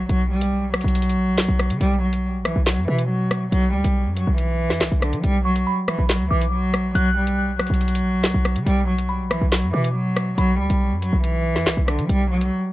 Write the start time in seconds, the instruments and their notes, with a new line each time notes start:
0.09 808-style bass B1, cello F#3, closed hi-hat
0.31 cello G3
0.41 closed hi-hat
0.74 cello F#3, cross-stick, closed hi-hat
0.81 808-style bass B1, closed hi-hat
0.88 closed hi-hat
0.95 closed hi-hat
1.02 closed hi-hat
1.09 closed hi-hat
1.16 808-style bass A#1
1.33 808-style bass B1
1.38 snare, clap, closed hi-hat
1.48 808-style bass B1
1.59 cross-stick, closed hi-hat
1.70 808-style bass D3, closed hi-hat
1.81 808-style bass B1, cello G3, closed hi-hat
2.03 cello F#3
2.13 closed hi-hat
2.34 808-style bass A#1
2.45 808-style bass B1, cello E3, cross-stick, closed hi-hat
2.56 808-style bass B1
2.67 cello F#3, snare, clap, closed hi-hat
2.77 808-style bass F#2
2.88 808-style bass B2, cello E3
2.99 closed hi-hat
3.09 cello F#3
3.31 cross-stick, closed hi-hat
3.52 808-style bass B1, cello F#3, closed hi-hat
3.74 808-style bass D2, cello G3
3.84 808-style bass B1, closed hi-hat
4.06 808-style bass F#2
4.16 cello F#3, closed hi-hat
4.27 808-style bass B1
4.38 cello E3, closed hi-hat
4.70 808-style bass F#2, snare
4.81 808-style bass B1, snare, clap, closed hi-hat
4.92 808-style bass B1
5.02 cello D3, cross-stick, closed hi-hat
5.13 808-style bass F#3, closed hi-hat
5.24 808-style bass B1, cello G3, closed hi-hat
5.45 cello F#3, synth bell C#6
5.56 closed hi-hat
5.67 synth bell B5
5.88 cello E3, cross-stick, closed hi-hat
5.99 808-style bass A#1
6.09 cello F#3, snare, clap, closed hi-hat
6.20 808-style bass D2
6.31 808-style bass B1, cello E3, synth bell D6
6.41 closed hi-hat
6.52 cello F#3
6.74 cross-stick, closed hi-hat
6.95 808-style bass B1, cello F#3, synth bell F#6, closed hi-hat
7.17 cello G3
7.27 closed hi-hat
7.59 cello F#3, cross-stick, closed hi-hat
7.67 808-style bass B1, closed hi-hat
7.74 closed hi-hat
7.81 closed hi-hat
7.88 closed hi-hat
7.95 closed hi-hat
8.02 808-style bass A#1
8.18 808-style bass B1
8.24 snare, clap, closed hi-hat
8.34 808-style bass B1
8.45 cross-stick, closed hi-hat
8.56 808-style bass D3, closed hi-hat
8.66 808-style bass B1, cello G3, closed hi-hat
8.88 cello F#3, synth bell C#6
8.99 closed hi-hat
9.09 synth bell B5
9.20 808-style bass A#1
9.31 808-style bass B1, cello E3, cross-stick, closed hi-hat
9.42 808-style bass B1
9.52 cello F#3, snare, clap, closed hi-hat
9.63 808-style bass F#2
9.73 808-style bass B2, cello E3, synth bell D6
9.84 closed hi-hat
9.95 cello F#3
10.16 cross-stick, closed hi-hat
10.38 808-style bass B1, cello F#3, synth bell B5, closed hi-hat
10.59 808-style bass D2, cello G3
10.70 808-style bass B1, closed hi-hat
10.91 808-style bass F#2
11.02 cello F#3, closed hi-hat
11.13 808-style bass B1
11.23 cello E3, closed hi-hat
11.56 808-style bass F#2, snare
11.66 808-style bass B1, snare, clap, closed hi-hat
11.77 808-style bass B1
11.88 cello D3, cross-stick, closed hi-hat
11.99 808-style bass F#3, closed hi-hat
12.09 808-style bass B1, cello G3, closed hi-hat
12.31 cello F#3
12.41 closed hi-hat